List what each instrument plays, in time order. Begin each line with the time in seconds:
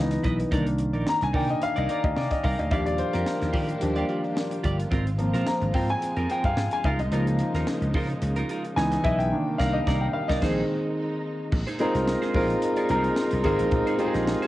Already playing: slap bass C#2, grand piano E3 B3 D#4
0.11 muted clean electric guitar stroke, snare, closed hi-hat
0.23 slap bass B1, clean electric guitar E4 B4 D#5, kick, closed hi-hat
0.39 muted clean electric guitar stroke, closed hi-hat
0.51 slap bass C2, grand piano D#3 A#3 D4, clean electric guitar D#4 A#4 D5, kick, closed hi-hat
0.66 muted clean electric guitar stroke, closed hi-hat
0.78 muted clean electric guitar stroke, closed hi-hat
0.93 slap bass A#1, clean electric guitar D#4 A#4 D5, closed hi-hat
1.07 grand piano A#5, snare
1.21 slap bass C2, grand piano G#5, muted clean electric guitar stroke, snare, closed hi-hat
1.33 slap bass C3, grand piano D#3 A#3 D4 G5, clean electric guitar D#4 A#4 D5, kick, open hi-hat
1.49 grand piano D#5, muted clean electric guitar stroke, closed hi-hat
1.61 grand piano F5, muted clean electric guitar stroke, closed hi-hat
1.76 slap bass C2, clean electric guitar D#4 A#4 D5, grand piano D#5, closed hi-hat
1.88 clean electric guitar D#4 A#4 D5, grand piano D5, closed hi-hat
2.03 slap bass D2, grand piano D#5, muted clean electric guitar stroke, kick, closed hi-hat
2.16 slap bass C3, grand piano D5, muted clean electric guitar stroke, snare
2.31 grand piano D#5, muted clean electric guitar stroke, kick, snare, closed hi-hat
2.44 slap bass C2, clean electric guitar D#4 A#4 D5, grand piano F5, kick, open hi-hat
2.59 slap bass D2, grand piano D#5, muted clean electric guitar stroke, closed hi-hat
2.71 slap bass D#2, string section D#3 A#3 D4 F4 G4, grand piano F3 G3 D4 F5, clean electric guitar F4 G4 D5, kick, closed hi-hat
2.86 grand piano D5, muted clean electric guitar stroke, closed hi-hat
2.98 grand piano C5, muted clean electric guitar stroke, closed hi-hat
3.13 slap bass F2, clean electric guitar F4 G4 D5, grand piano A#4, snare, closed hi-hat
3.27 snare
3.41 slap bass D#2, muted clean electric guitar stroke, snare, closed hi-hat
3.53 slap bass D#3, clean electric guitar F4 G4 D5, kick, open hi-hat
3.68 muted clean electric guitar stroke, closed hi-hat
3.81 slap bass D#2, grand piano F3 G3 D4, muted clean electric guitar stroke, closed hi-hat
3.96 clean electric guitar F4 G4 D5, closed hi-hat
4.09 clean electric guitar F4 G4 D5, closed hi-hat
4.23 muted clean electric guitar stroke, closed hi-hat
4.36 muted clean electric guitar stroke, snare
4.51 muted clean electric guitar stroke, closed hi-hat
4.64 slap bass G1, clean electric guitar F4 G4 D5, kick, closed hi-hat
4.79 muted clean electric guitar stroke, closed hi-hat
4.91 slap bass G#1, string section G#3 C4, clean electric guitar C4 F4 A#4, kick, closed hi-hat
5.06 muted clean electric guitar stroke, closed hi-hat
5.18 grand piano F3 A#3 C4, muted clean electric guitar stroke, closed hi-hat
5.34 slap bass A#1, clean electric guitar C4 F4 A#4, snare, closed hi-hat
5.47 grand piano A#5, snare
5.62 slap bass G#1, muted clean electric guitar stroke, closed hi-hat
5.74 slap bass G#2, clean electric guitar C4 F4 A#4, grand piano G5, kick, open hi-hat
5.89 grand piano G#5, muted clean electric guitar stroke, closed hi-hat
6.02 muted clean electric guitar stroke, closed hi-hat
6.17 slap bass F2, clean electric guitar C4 F4 A#4, closed hi-hat
6.30 clean electric guitar C4 F4 A#4, grand piano G5, closed hi-hat
6.44 slap bass G2, grand piano F5, kick, closed hi-hat
6.57 slap bass G#2, muted clean electric guitar stroke, snare
6.71 grand piano G#5, muted clean electric guitar stroke, closed hi-hat
6.84 slap bass C#2, string section C#3 A#3 D#4, clean electric guitar D#4 F4 A#4, grand piano F5, kick, closed hi-hat
6.99 slap bass C2, grand piano D#5, muted clean electric guitar stroke, closed hi-hat
7.11 slap bass C#2, grand piano F3 A#3 D#4, clean electric guitar D#4 F4 A#4, closed hi-hat
7.27 muted clean electric guitar stroke, closed hi-hat
7.39 muted clean electric guitar stroke, closed hi-hat
7.54 slap bass D#2, clean electric guitar D#4 F4 A#4, snare, closed hi-hat
7.67 snare
7.81 slap bass C#2, muted clean electric guitar stroke, closed hi-hat
7.94 slap bass C#3, clean electric guitar D#4 F4 A#4, kick, open hi-hat
8.09 muted clean electric guitar stroke, closed hi-hat
8.22 slap bass C#2, muted clean electric guitar stroke, closed hi-hat
8.36 clean electric guitar D#4 F4 A#4, closed hi-hat
8.49 clean electric guitar D#4 F4 A#4, closed hi-hat
8.64 muted clean electric guitar stroke, closed hi-hat
8.76 slap bass C#2, grand piano E3 B3 D#4 G#5, string section E3 G#3 B3, muted clean electric guitar stroke, snare
8.92 muted clean electric guitar stroke, snare, closed hi-hat
9.04 slap bass B1, clean electric guitar E4 B4 D#5, grand piano E5, kick, closed hi-hat
9.19 grand piano G5, muted clean electric guitar stroke, closed hi-hat
9.32 string section C3 G3 A#3 D4, grand piano D#3 A#3 D4
9.58 slap bass C2, clean electric guitar D#4 A#4 D5, grand piano F5, kick, snare, crash
9.73 grand piano D#5
9.87 slap bass C2, clean electric guitar D#4 A#4 D5, kick, snare
10.01 grand piano G5
10.13 grand piano F5
10.28 slap bass C2, clean electric guitar D#4 A#4 D5, grand piano D#5, kick, snare
10.42 slap bass A#1, grand piano D#3 G#3 C4, string section G#3 D#4, clean electric guitar D#4 G#4 C5, kick, snare, crash
11.52 slap bass A#1, string section G#3 A#3 D#4, muted clean electric guitar stroke, kick, crash
11.67 clean electric guitar D#4 G#4 C5, closed hi-hat
11.79 grand piano G#3 C4 D#4 F4 A#4, clean electric guitar D#4 G#4 C5, closed hi-hat
11.94 slap bass C2, muted clean electric guitar stroke, snare, closed hi-hat
12.07 muted clean electric guitar stroke, snare
12.22 clean electric guitar D#4 G#4 C5, snare, closed hi-hat
12.34 slap bass A#1, grand piano G#3 C4 D#4 F4 A#4, clean electric guitar D#4 G#4 D5, kick, open hi-hat
12.50 closed hi-hat
12.62 muted clean electric guitar stroke, closed hi-hat
12.77 clean electric guitar D#4 G#4 D5, closed hi-hat
12.89 slap bass C2, grand piano G#3 C4 D#4 F4 A#4, clean electric guitar D#4 G#4 C5, closed hi-hat
13.04 muted clean electric guitar stroke, closed hi-hat
13.16 snare
13.31 slap bass C2, muted clean electric guitar stroke, closed hi-hat
13.44 slap bass G#1, grand piano G#3 C4 D#4 F4 A#4, clean electric guitar D#4 G#4 C5, kick, closed hi-hat
13.59 slap bass A1, muted clean electric guitar stroke, closed hi-hat
13.71 slap bass A#1, muted clean electric guitar stroke, kick, closed hi-hat
13.87 clean electric guitar D#4 G#4 C5, closed hi-hat
13.98 grand piano G#3 C4 D#4 F4 G4, clean electric guitar D#4 G#4 C5, closed hi-hat
14.06 grand piano G#4
14.14 slap bass A#1, snare, closed hi-hat
14.28 muted clean electric guitar stroke, snare
14.42 clean electric guitar D#4 G#4 C5, closed hi-hat